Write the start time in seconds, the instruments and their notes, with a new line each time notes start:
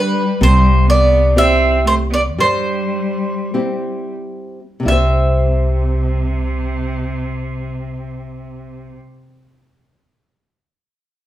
Already playing: cello G3, nylon-string guitar D4 G4 B4, mandolin B4
0.41 upright bass C2, nylon-string guitar C3, cello G3, mandolin C5
0.87 cello B3, mandolin D5
1.35 cello C4, nylon-string guitar C4 E4 G4, mandolin E5
1.85 cello A3, mandolin C5
2.10 cello B3, mandolin D5
2.37 upright bass G2, cello G3, nylon-string guitar G3, mandolin C5
3.54 nylon-string guitar C4 E4 G4
4.80 nylon-string guitar C3 G3
4.84 upright bass C2, cello C3, nylon-string guitar E4
4.88 nylon-string guitar G4 C5, mandolin E5